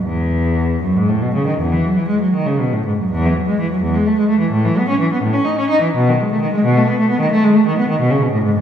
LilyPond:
\new Staff \with { instrumentName = "Cello" } { \clef bass \time 12/8 \key e \major \tempo 4. = 85 e,4. fis,16 gis,16 a,16 b,16 cis16 dis16 e,16 e16 fis16 e16 gis16 fis16 dis16 cis16 b,16 a,16 gis,16 fis,16 | e,16 e16 fis16 gis16 e16 fis16 e,16 gis16 a16 gis16 a16 e16 a,16 e16 b16 cis'16 e16 b16 a,16 cis'16 dis'16 cis'16 dis'16 e16 | b,16 dis16 gis16 a16 dis16 gis16 b,16 a16 b16 a16 b16 dis16 a16 gis16 a16 dis16 b16 dis16 b,16 cis16 b,16 a,16 gis,16 fis,16 | }